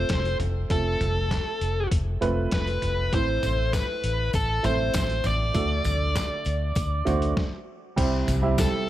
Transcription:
0.00 0.70 A3 medium
0.00 0.70 C4 medium
0.00 0.70 F4 medium
0.00 0.71 A4 medium
0.00 0.37 C5 medium
0.09 0.35 F1 loud
0.09 kick loud
0.09 snare loud
0.09 clap medium
0.09 closed hi-hat medium
0.25 closed hi-hat soft
0.40 0.65 F1 medium
0.40 closed hi-hat medium
0.40 floor tom medium
0.70 0.95 F1 loud
0.70 1.56 A3 medium
0.70 1.56 C4 medium
0.70 1.56 F4 medium
0.70 1.57 A4 medium
0.70 1.88 A4 medium
0.70 kick medium
0.70 closed hi-hat medium
1.01 1.38 F1 medium
1.01 closed hi-hat medium
1.01 floor tom medium
1.31 kick medium
1.31 snare medium
1.31 clap medium
1.31 closed hi-hat medium
1.61 1.86 F1 medium
1.61 closed hi-hat medium
1.91 2.16 F1 medium
1.91 kick medium
1.91 closed hi-hat medium
2.21 2.47 F1 medium
2.21 2.86 A3 medium
2.21 2.86 C4 medium
2.21 2.86 F4 medium
2.21 2.86 B4 loud
2.21 closed hi-hat medium
2.21 floor tom medium
2.51 2.77 F1 medium
2.51 3.14 B4 medium
2.51 kick loud
2.51 snare loud
2.51 clap medium
2.51 closed hi-hat medium
2.67 closed hi-hat soft
2.82 3.07 F1 medium
2.82 closed hi-hat medium
2.82 floor tom medium
3.12 3.38 A1 medium
3.12 4.00 A2 medium
3.12 3.98 A3 medium
3.12 3.99 C4 medium
3.12 3.99 E4 medium
3.12 3.99 A4 medium
3.12 3.73 C5 loud
3.12 kick medium
3.12 closed hi-hat medium
3.43 3.81 A1 medium
3.43 closed hi-hat medium
3.43 floor tom medium
3.43 tambourine soft
3.73 4.30 B4 medium
3.73 kick loud
3.73 snare medium
3.73 clap medium
3.73 closed hi-hat medium
3.73 tambourine medium
4.04 4.29 A1 medium
4.04 closed hi-hat medium
4.33 4.59 A1 medium
4.33 4.65 A4 medium
4.33 kick loud
4.33 closed hi-hat medium
4.33 tambourine soft
4.63 4.89 A1 medium
4.63 5.28 A3 medium
4.63 5.29 C4 medium
4.63 5.29 E4 medium
4.63 5.29 A4 medium
4.63 5.27 C5 loud
4.63 closed hi-hat medium
4.63 floor tom medium
4.63 tambourine soft
4.94 5.19 A1 loud
4.94 kick loud
4.94 snare loud
4.94 clap medium
4.94 closed hi-hat medium
4.94 tambourine medium
5.10 closed hi-hat soft
5.24 5.50 A1 medium
5.24 7.34 D5 medium
5.24 closed hi-hat medium
5.24 floor tom medium
5.24 tambourine soft
5.54 5.80 D2 medium
5.54 6.42 D3 medium
5.54 6.41 A3 medium
5.54 6.41 D4 medium
5.54 6.41 F#4 medium
5.54 6.41 A4 medium
5.54 kick medium
5.54 closed hi-hat medium
5.54 tambourine soft
5.84 6.23 D2 loud
5.84 closed hi-hat medium
5.84 floor tom medium
5.84 tambourine soft
6.15 kick medium
6.15 snare medium
6.15 clap medium
6.15 closed hi-hat medium
6.15 tambourine medium
6.45 6.71 D2 medium
6.45 closed hi-hat medium
6.45 tambourine soft
6.75 7.01 D2 medium
6.75 kick loud
6.75 closed hi-hat medium
6.75 tambourine medium
7.05 7.32 D2 medium
7.05 7.36 A3 medium
7.05 7.36 D4 medium
7.05 7.36 F#4 medium
7.05 7.37 C5 medium
7.05 closed hi-hat medium
7.05 floor tom medium
7.05 tambourine soft
7.22 closed hi-hat soft
7.37 kick loud
7.37 snare medium
7.96 8.23 C2 medium
7.96 8.84 C3 medium
7.96 8.29 G3 medium
7.96 8.29 C4 medium
7.96 8.29 E4 medium
7.96 8.29 G4 medium
7.96 8.30 C5 medium
7.96 kick loud
7.96 closed hi-hat loud
7.96 crash medium
8.28 8.65 C2 loud
8.28 closed hi-hat medium
8.28 floor tom medium
8.28 tambourine medium
8.42 8.89 G3 medium
8.42 8.89 C4 medium
8.42 8.89 E4 medium
8.42 8.89 G4 medium
8.42 8.89 E5 medium
8.58 8.87 A4 medium
8.58 kick loud
8.58 snare loud
8.58 clap medium
8.58 closed hi-hat medium
8.58 tambourine medium

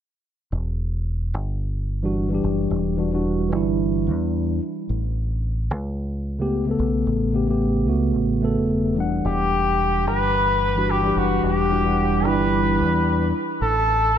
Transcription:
0.52 1.34 E1 medium
1.34 2.40 G1 medium
2.03 2.27 E3 medium
2.03 2.27 G3 medium
2.03 2.28 D4 medium
2.03 2.28 F#4 medium
2.29 2.94 E3 medium
2.29 2.95 G3 medium
2.29 2.95 D4 medium
2.34 2.96 G4 medium
2.44 2.67 F#1 medium
2.70 3.52 E1 medium
2.97 3.09 E3 medium
2.97 3.10 G3 medium
2.97 3.10 D4 medium
2.97 3.10 F#4 medium
3.12 3.48 E3 medium
3.12 3.49 G3 medium
3.12 3.50 D4 medium
3.12 3.50 F#4 medium
3.49 4.08 G1 medium
3.49 4.58 E3 medium
3.49 4.59 G3 medium
3.53 4.60 D4 medium
3.53 4.61 E4 loud
4.07 4.58 E2 medium
4.89 5.71 A1 medium
5.71 6.77 C#2 medium
6.39 6.63 C#3 medium
6.39 6.63 A3 medium
6.39 6.64 B3 medium
6.39 6.64 G4 medium
6.65 7.30 C#3 medium
6.65 7.31 A3 medium
6.69 7.32 B3 medium
6.69 7.33 A4 medium
6.79 7.03 B1 medium
7.07 7.88 A1 medium
7.33 7.45 C#3 medium
7.33 7.46 A3 medium
7.33 7.46 B3 medium
7.33 7.47 G4 medium
7.48 7.85 C#3 medium
7.48 7.85 A3 medium
7.48 7.86 B3 medium
7.48 7.86 G4 medium
7.86 8.16 C#2 medium
7.86 8.40 C#3 medium
7.86 8.40 A3 medium
7.86 8.41 B3 medium
7.86 8.41 F#4 medium
8.16 8.58 A1 loud
8.41 8.94 C#3 medium
8.41 8.94 A3 medium
8.41 8.95 B3 medium
8.41 8.95 A4 loud
8.58 9.22 E1 medium
8.94 10.71 E3 medium
8.94 10.72 G3 medium
8.94 10.73 D4 medium
9.00 10.74 F#5 medium
9.25 10.07 E1 medium
9.25 10.04 G4 loud
10.07 11.13 G1 medium
10.07 10.92 B4 loud
10.76 11.00 E3 medium
10.76 11.00 G3 medium
10.76 11.00 D4 medium
10.76 11.01 F#4 medium
10.90 11.19 G4 medium
11.01 11.66 E3 medium
11.01 11.67 G3 medium
11.05 11.68 D4 medium
11.05 11.69 G4 loud
11.16 11.39 F#1 medium
11.16 11.44 F#4 medium
11.43 12.24 E1 medium
11.43 12.27 G4 medium
11.69 11.82 E3 medium
11.69 11.82 G3 medium
11.69 11.83 D4 medium
11.69 11.83 F#4 medium
11.84 12.20 E3 medium
11.84 12.22 G3 medium
11.84 12.22 D4 medium
11.84 12.23 F#5 medium
12.22 12.81 G1 medium
12.22 13.31 E3 medium
12.22 13.32 G3 medium
12.22 13.33 D4 medium
12.26 13.34 E4 medium
12.26 13.34 B4 medium
12.80 13.31 E2 medium
13.61 14.18 A1 medium
13.61 14.18 A4 loud

